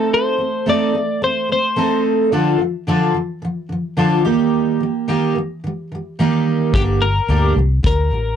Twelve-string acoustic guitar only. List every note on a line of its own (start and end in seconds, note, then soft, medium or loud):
0.00 0.38 A3 soft
0.00 0.39 C4 soft
0.00 0.39 D#4 medium
0.00 0.68 A4 medium
0.38 0.62 A3 soft
0.38 0.63 C4 soft
0.66 0.93 A3 medium
0.66 0.95 C4 medium
0.66 0.95 D#4 medium
0.66 0.96 A4 medium
0.95 1.18 A3 soft
0.95 1.19 C4 soft
1.22 1.45 A3 soft
1.22 1.47 C4 medium
1.49 1.73 A3 soft
1.49 1.74 C4 soft
1.76 2.32 A3 medium
1.76 2.32 C4 medium
1.76 2.33 D#4 medium
1.76 2.33 A4 medium
2.32 2.58 D3 medium
2.32 2.60 F3 medium
2.32 2.60 D4 medium
2.32 2.61 F4 medium
2.32 2.61 A4 medium
2.59 2.83 D3 soft
2.59 2.84 F3 soft
2.87 3.13 D3 medium
2.87 3.16 F3 medium
2.87 3.16 D4 medium
2.87 3.16 F4 medium
2.87 3.16 A4 medium
3.14 3.38 D3 soft
3.14 3.39 F3 soft
3.42 3.66 D3 medium
3.42 3.67 F3 medium
3.69 3.93 D3 soft
3.69 3.95 F3 soft
3.97 4.25 D3 medium
3.97 4.25 F3 medium
3.97 4.25 D4 medium
3.97 4.25 F4 medium
3.97 4.24 A4 medium
4.25 4.79 D#3 medium
4.25 4.83 G3 medium
4.25 5.09 A#3 medium
4.25 4.81 D#4 medium
4.25 5.09 G4 medium
4.80 5.04 D#3 soft
4.80 5.05 G3 medium
5.08 5.34 D#3 medium
5.08 5.36 G3 medium
5.08 5.36 A#3 medium
5.08 5.36 D#4 medium
5.08 5.37 G4 medium
5.35 5.59 D#3 soft
5.35 5.60 G3 medium
5.64 5.87 D#3 medium
5.64 5.88 G3 medium
5.92 6.15 D#3 soft
5.92 6.16 G3 medium
6.19 6.74 D#3 medium
6.19 6.74 G3 medium
6.19 6.74 A#3 medium
6.19 6.75 D#4 medium
6.19 6.75 G4 medium
6.75 6.99 G2 medium
6.75 7.01 D3 medium
6.75 7.02 G3 medium
6.75 7.02 A#3 medium
6.75 7.03 D4 medium
6.75 7.03 G4 medium
7.00 7.24 G2 soft
7.00 7.25 D3 soft
7.00 7.25 G3 soft
7.28 7.56 G2 medium
7.28 7.56 D3 medium
7.28 7.57 G3 medium
7.28 7.57 A#3 medium
7.28 7.57 D4 medium
7.28 7.57 G4 medium
7.57 7.80 G2 soft
7.57 7.80 D3 soft
7.57 7.81 G3 soft
7.83 8.07 G2 soft
7.83 8.08 D3 medium
7.83 8.08 G3 medium
8.11 8.35 G2 soft
8.11 8.35 D3 soft
8.11 8.36 G3 soft